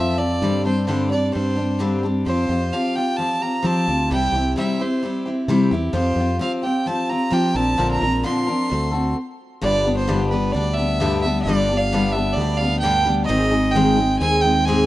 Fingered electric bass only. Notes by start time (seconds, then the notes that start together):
Already playing: F2
0.42 G2
1.36 G2
2.26 F2
2.49 F2
3.64 F3
3.88 D2
4.11 C2
4.32 C2
5.48 C3
5.71 E2
5.93 F2
6.16 F2
7.32 F3
7.55 A#1
7.79 A#1
8.02 A#1
8.72 D2
9.63 G1
10.55 D2
11.45 G1
12.37 D2
13.29 G#1
14.21 D#2